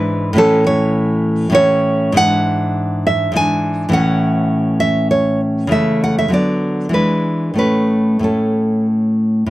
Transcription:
0.00 0.32 G#2 medium
0.00 0.33 E3 soft
0.00 0.34 D4 medium
0.00 0.34 B4 medium
0.33 1.48 A2 medium
0.33 1.49 E3 medium
0.33 1.50 C#4 medium
0.38 0.65 A4 loud
0.67 1.50 C#5 medium
1.50 2.14 A2 medium
1.50 2.12 E3 medium
1.50 2.15 C#4 medium
1.55 2.16 C#5 loud
2.12 3.29 G#2 medium
2.12 3.30 E3 medium
2.12 3.31 D4 medium
2.17 3.02 F#5 loud
3.07 3.34 E5 medium
3.32 3.89 G#2 medium
3.32 3.88 E3 medium
3.32 3.91 D4 soft
3.36 3.92 G#5 loud
3.89 5.65 A2 medium
3.89 5.66 E3 medium
3.89 5.67 C#4 medium
3.93 4.77 F#5 loud
4.80 5.09 E5 medium
5.11 5.40 C#5 medium
5.67 6.28 C#3 medium
5.67 6.29 E3 soft
5.67 6.28 A3 soft
5.72 6.01 E5 medium
6.04 6.18 F#5 medium
6.19 6.33 E5 medium
6.28 6.90 D3 soft
6.28 6.89 F#3 soft
6.28 6.92 B3 soft
6.34 6.93 D5 medium
6.89 7.53 E3 soft
6.89 7.55 G#3 soft
6.93 7.57 D4 soft
6.93 7.56 B4 medium
7.54 8.18 A2 soft
7.54 8.19 A3 soft
7.58 8.20 C#4 soft
7.58 8.21 B4 medium
8.19 9.45 A2 soft
8.19 9.50 A3 soft
8.19 9.50 C#4 soft
8.24 8.86 A4 soft
9.46 9.50 A2 medium

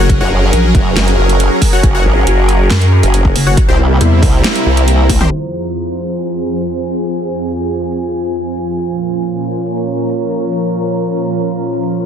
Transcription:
0.00 0.19 F#1 medium
0.00 3.53 F#3 medium
0.00 3.53 C#4 medium
0.00 3.57 F#4 medium
0.00 3.53 G#4 medium
0.00 3.53 A#4 loud
0.00 4.27 A#4 medium
0.00 3.57 G#5 medium
0.09 kick loud
0.09 closed hi-hat medium
0.21 0.51 F#1 medium
0.21 0.30 F#4 medium
0.21 0.30 C#5 medium
0.21 0.30 F#5 medium
0.53 0.73 A#1 loud
0.53 closed hi-hat medium
0.75 0.95 F#1 loud
0.75 kick loud
0.75 closed hi-hat soft
0.96 1.16 F#1 medium
0.96 snare loud
0.96 closed hi-hat medium
1.08 closed hi-hat medium
1.18 1.49 F#1 medium
1.29 closed hi-hat soft
1.40 closed hi-hat medium
1.62 kick medium
1.62 open hi-hat medium
1.73 1.82 F#4 loud
1.73 1.82 C#5 medium
1.73 1.82 F#5 loud
1.83 2.03 F#1 loud
1.83 kick loud
1.83 closed hi-hat medium
1.95 2.04 F#4 medium
1.95 2.04 C#5 medium
1.95 2.04 F#5 medium
2.05 2.25 G#1 loud
2.27 2.69 F#1 loud
2.27 closed hi-hat medium
2.49 closed hi-hat medium
2.70 3.01 F#2 loud
2.70 snare loud
2.70 closed hi-hat medium
2.82 closed hi-hat medium
3.03 3.34 F#1 loud
3.03 closed hi-hat medium
3.14 closed hi-hat medium
3.25 kick medium
3.36 3.56 F#1 medium
3.36 open hi-hat loud
3.47 3.56 F#4 loud
3.47 3.56 C#5 medium
3.47 3.56 F#5 loud
3.57 5.29 C3 medium
3.57 5.29 G3 medium
3.57 5.29 A#3 medium
3.57 5.29 E4 loud
3.57 5.31 E4 medium
3.57 kick loud
3.57 closed hi-hat medium
3.68 3.99 C2 loud
3.68 3.78 C4 medium
3.68 3.78 G4 medium
3.68 3.78 C5 medium
3.68 8.79 C5 medium
4.01 4.21 E2 loud
4.01 closed hi-hat medium
4.06 6.71 A#5 medium
4.22 4.43 C2 loud
4.22 kick loud
4.22 open hi-hat medium
4.44 snare loud
4.44 closed hi-hat medium
4.55 closed hi-hat medium
4.66 5.30 C2 medium
4.77 closed hi-hat medium
4.88 closed hi-hat medium
5.09 kick medium
5.09 open hi-hat loud
5.09 high tom medium
5.21 5.30 C4 loud
5.21 5.30 G4 medium
5.21 5.30 C5 loud
5.21 mid tom medium
5.31 8.76 F2 medium
5.31 12.06 F3 medium
5.31 8.76 C4 medium
5.31 12.06 F4 medium
5.31 8.76 G#4 medium
5.31 crash medium
5.31 downlifter medium
5.75 closed hi-hat medium
5.95 9.59 G#5 medium
5.95 closed hi-hat soft
6.18 closed hi-hat medium
6.29 closed hi-hat soft
6.51 closed hi-hat soft
6.62 closed hi-hat medium
6.83 closed hi-hat soft
7.05 closed hi-hat medium
7.49 closed hi-hat medium
7.70 closed hi-hat soft
7.92 closed hi-hat medium
8.03 closed hi-hat soft
8.25 closed hi-hat soft
8.36 closed hi-hat medium
8.57 closed hi-hat soft
8.79 12.06 A#2 medium
8.79 12.06 C#4 medium
8.79 12.06 A#4 medium
8.79 closed hi-hat medium
9.23 closed hi-hat medium
9.38 12.06 C#5 medium
9.44 closed hi-hat soft
9.64 12.06 A#5 medium
9.64 closed hi-hat medium
9.77 closed hi-hat soft
9.99 closed hi-hat soft
10.09 closed hi-hat medium
10.31 closed hi-hat soft
10.53 closed hi-hat medium
10.96 closed hi-hat medium
11.18 closed hi-hat soft
11.40 closed hi-hat medium
11.51 closed hi-hat soft
11.73 closed hi-hat soft
11.83 closed hi-hat medium

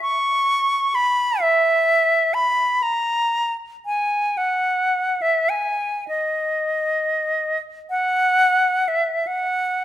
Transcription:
0.01 0.96 C#6 medium
0.95 1.43 B5 medium
1.41 2.35 E5 medium
2.34 2.84 B5 medium
2.82 3.54 A#5 medium
3.86 4.39 G#5 medium
4.37 5.23 F#5 medium
5.22 5.51 E5 medium
5.49 6.08 G#5 medium
6.08 7.58 D#5 medium
7.90 8.89 F#5 medium
8.88 9.28 E5 medium
9.27 9.85 F#5 medium

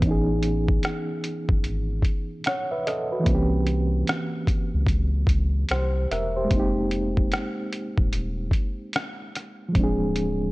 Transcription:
0.00 0.79 A1 loud
0.00 2.38 E3 medium
0.00 2.40 B3 medium
0.00 2.42 C#4 medium
0.00 kick loud
0.00 closed hi-hat medium
0.07 2.44 D#4 medium
0.07 2.45 G#4 medium
0.43 closed hi-hat medium
0.68 kick medium
0.83 cross-stick loud
0.83 closed hi-hat medium
1.24 closed hi-hat medium
1.49 1.63 F#1 medium
1.49 kick loud
1.64 2.01 G#1 medium
1.64 closed hi-hat medium
2.02 kick medium
2.02 closed hi-hat medium
2.44 2.70 C#5 medium
2.44 2.70 F#5 medium
2.44 cross-stick loud
2.44 closed hi-hat medium
2.71 2.86 B4 medium
2.71 2.85 E5 medium
2.87 3.10 A4 medium
2.87 3.10 D#5 medium
2.87 cross-stick soft
2.87 closed hi-hat medium
3.12 3.50 F#4 medium
3.12 3.50 B4 medium
3.20 6.43 E3 medium
3.20 6.45 A#3 medium
3.26 4.04 C2 medium
3.26 6.47 C4 medium
3.26 kick medium
3.26 closed hi-hat medium
3.31 6.49 C#4 medium
3.31 5.70 G4 medium
3.67 closed hi-hat medium
4.07 cross-stick loud
4.07 closed hi-hat medium
4.47 kick medium
4.47 closed hi-hat medium
4.74 5.25 C#2 medium
4.87 kick medium
4.87 closed hi-hat medium
5.27 5.65 C#2 medium
5.27 kick medium
5.27 closed hi-hat medium
5.69 6.07 C2 medium
5.69 6.09 G4 medium
5.69 6.09 C5 medium
5.69 cross-stick loud
5.69 closed hi-hat medium
6.11 6.47 E1 medium
6.11 6.35 A#4 medium
6.11 6.35 E5 medium
6.11 cross-stick soft
6.11 closed hi-hat medium
6.36 6.58 G4 medium
6.36 6.74 C5 medium
6.45 9.68 G#3 medium
6.45 9.70 A#3 medium
6.51 7.28 F1 medium
6.51 9.72 C4 medium
6.51 kick medium
6.51 closed hi-hat medium
6.56 9.73 D#4 medium
6.56 9.75 G4 medium
6.91 closed hi-hat medium
7.17 kick medium
7.32 cross-stick loud
7.32 closed hi-hat medium
7.73 closed hi-hat medium
7.98 8.12 D1 medium
7.98 kick loud
8.13 8.50 D#1 medium
8.13 closed hi-hat medium
8.51 kick medium
8.51 closed hi-hat medium
8.93 cross-stick loud
8.93 closed hi-hat medium
9.35 cross-stick soft
9.35 closed hi-hat medium
9.69 10.52 F3 medium
9.69 10.52 G#3 medium
9.75 10.52 D1 loud
9.75 10.52 C4 medium
9.75 kick loud
9.75 closed hi-hat medium
9.80 10.52 D4 medium
9.80 10.52 G#4 medium
10.16 closed hi-hat medium

